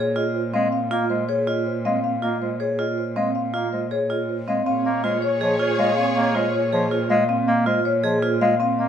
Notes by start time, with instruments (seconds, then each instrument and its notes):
Already playing: cello A#2, vibraphone G#4, marimba C#5
0.16 vibraphone F4, marimba D#5
0.35 marimba C5
0.53 bass clarinet G#3, vibraphone C4, marimba F5
0.72 marimba F5
0.91 bass clarinet A#3, vibraphone F4, marimba D#5
1.10 bass clarinet G#3, marimba C5
1.29 vibraphone G#4, marimba C#5
1.47 vibraphone F4, marimba D#5
1.66 marimba C5
1.85 bass clarinet G#3, vibraphone C4, marimba F5
2.04 marimba F5
2.22 bass clarinet A#3, vibraphone F4, marimba D#5
2.42 bass clarinet G#3, marimba C5
2.60 vibraphone G#4, marimba C#5
2.79 vibraphone F4, marimba D#5
2.98 marimba C5
3.16 bass clarinet G#3, vibraphone C4, marimba F5
3.35 marimba F5
3.54 bass clarinet A#3, vibraphone F4, marimba D#5
3.73 bass clarinet G#3, marimba C5
3.91 vibraphone G#4, marimba C#5
4.10 vibraphone F4, marimba D#5
4.29 marimba C5
4.48 bass clarinet G#3, vibraphone C4, marimba F5
4.66 cello A#2, vibraphone C4, violin section G#4 C#5, alto flute C#5, marimba F5
4.85 bass clarinet A#3, marimba D#5
5.04 bass clarinet G#3, vibraphone F4, marimba C5
5.22 marimba C#5
5.41 bass clarinet F3, vibraphone G#4, marimba D#5
5.60 vibraphone F4, marimba C5
5.79 bass clarinet G#3, marimba F5
5.97 vibraphone C4, marimba F5
6.16 bass clarinet A#3, marimba D#5
6.35 bass clarinet G#3, vibraphone F4, marimba C5
6.54 marimba C#5
6.72 bass clarinet F3, vibraphone G#4, marimba D#5
6.91 vibraphone F4, marimba C5
7.10 bass clarinet G#3, marimba F5
7.29 vibraphone C4, marimba F5
7.47 bass clarinet A#3, marimba D#5
7.66 bass clarinet G#3, vibraphone F4, marimba C5
7.85 marimba C#5
8.04 bass clarinet F3, vibraphone G#4, marimba D#5
8.22 vibraphone F4, marimba C5
8.41 bass clarinet G#3, marimba F5
8.60 vibraphone C4, marimba F5
8.79 bass clarinet A#3, marimba D#5